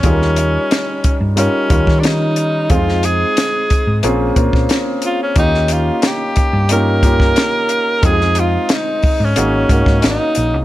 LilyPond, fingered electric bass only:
\new Staff \with { instrumentName = "Fingered electric bass" } { \clef bass \time 4/4 \key ees \dorian \tempo 4 = 90 ees,4 r8. g,8 r16 ees,16 ees4~ ees16 | f,4 r8. aes,16 bes,,8 bes,16 bes,16 r4 | ees,4 r8. g,4~ g,16 r4 | f,4 r8. aes,16 aes,,8 aes,16 aes,16 aes,,16 r16 bes,,16 c,16 | }